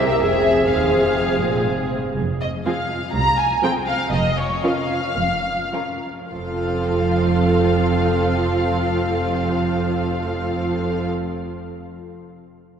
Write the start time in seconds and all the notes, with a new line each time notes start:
Already playing: C2 C3 C4 G4 A#4
0.09 E5
0.19 F1 F2 C4 G#4 E5
0.68 D#2 C4 G#4 F5
0.93 F2
1.42 A#2
1.66 G#2
1.91 G2
2.16 F1 F2
2.41 D#5
2.65 F3 C4 F4 G#4 F5
3.13 C2 A#5
3.38 G#5
3.63 F3 C4 F4 G#4 G5
3.87 F5
4.12 F1 F2 D#5
4.37 C#5
4.64 F3 C#4 F4 A#4 F5
5.17 F1 F2
5.73 F3 C#4 F4 A#4
6.31 F1 F2 F3 C4 F4 A4 F5